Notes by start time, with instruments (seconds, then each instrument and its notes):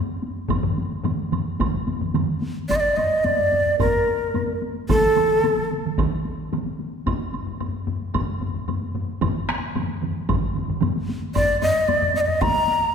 0.09 taiko high
0.22 taiko high
0.36 taiko high
0.49 taiko, taiko low-mid, taiko mid, taiko high, high woodblock
0.63 taiko low-mid, taiko mid
0.78 taiko high
0.91 taiko high
1.04 taiko low-mid, taiko mid, taiko high, high woodblock
1.19 taiko high
1.32 taiko low-mid, taiko mid, taiko high, high woodblock
1.46 taiko high
1.60 taiko, taiko low-mid, taiko mid, taiko high, high woodblock
1.74 taiko low-mid, taiko mid, taiko high
1.87 taiko low-mid, taiko mid, taiko high
2.01 taiko low-mid, taiko mid, taiko high
2.14 taiko low-mid, taiko mid, taiko high, high woodblock
2.28 taiko high
2.42 taiko high
2.56 taiko high
2.69 shakuhachi D5, taiko, taiko low-mid, taiko high, high woodblock
2.76 shakuhachi D#5
2.80 shakuhachi D5, taiko high
2.96 shakuhachi D#5, taiko low-mid, taiko high, high woodblock
3.11 taiko high
3.24 shakuhachi D5, taiko low-mid, taiko high, high woodblock
3.38 taiko low-mid, taiko high
3.52 taiko low-mid, taiko high
3.66 taiko low-mid, taiko high
3.79 shakuhachi A#4, taiko, taiko low-mid, taiko high, high woodblock
3.93 taiko high
4.07 taiko high
4.21 taiko high
4.34 taiko low-mid, taiko high, high woodblock
4.48 taiko high
4.62 taiko high
4.75 taiko high
4.89 shakuhachi A4, taiko, taiko mid, taiko high, high woodblock
5.03 taiko high
5.17 taiko mid, taiko high, high woodblock
5.30 taiko high
5.44 taiko mid, taiko high, high woodblock
5.58 taiko mid, taiko high
5.71 taiko mid, taiko high
5.84 taiko mid, taiko high
5.98 taiko, taiko mid, taiko high, high woodblock
6.12 taiko high
6.25 taiko high
6.39 taiko high
6.53 taiko mid, taiko high, high woodblock
6.66 taiko high
6.79 taiko high
6.93 taiko high
7.06 taiko, taiko low-mid, taiko high, high woodblock
7.20 taiko high
7.34 taiko low-mid, taiko high, high woodblock
7.47 taiko low-mid, taiko high
7.60 taiko low-mid, taiko high, high woodblock
7.74 taiko high
7.87 taiko low-mid, taiko high
8.02 taiko high
8.14 taiko, taiko low-mid, taiko high, high woodblock
8.29 taiko high
8.41 taiko low-mid, taiko high
8.54 taiko low-mid, taiko high
8.68 taiko low-mid, taiko high, high woodblock
8.82 taiko high
8.95 taiko low-mid, taiko high
9.09 taiko high
9.22 taiko, taiko low-mid, taiko mid, taiko high, high woodblock
9.36 taiko high
9.48 taiko rim, taiko high, high woodblock
9.63 taiko high
9.75 taiko low-mid, taiko mid, taiko high, high woodblock
9.89 taiko high
10.02 taiko low-mid, taiko mid, taiko high
10.16 taiko high
10.29 taiko, taiko low-mid, taiko mid, taiko high, high woodblock
10.43 taiko high
10.55 taiko low-mid, taiko mid, taiko high
10.68 taiko low-mid, taiko mid, taiko high
10.81 taiko low-mid, taiko mid, taiko high, high woodblock
10.96 taiko high
11.09 taiko high
11.23 taiko high
11.35 shakuhachi D5, taiko, taiko low-mid, taiko high, high woodblock
11.49 taiko high
11.62 shakuhachi D#5, taiko low-mid, taiko high, high woodblock
11.75 taiko high
11.88 shakuhachi D5, taiko low-mid, taiko high, high woodblock
12.02 taiko low-mid, taiko high
12.15 shakuhachi D#5, taiko low-mid, taiko high
12.21 shakuhachi D5
12.26 shakuhachi D#5, taiko low-mid, taiko high
12.41 shakuhachi A#5, taiko, taiko low-mid, taiko high, high woodblock
12.55 taiko high
12.68 taiko high
12.81 taiko high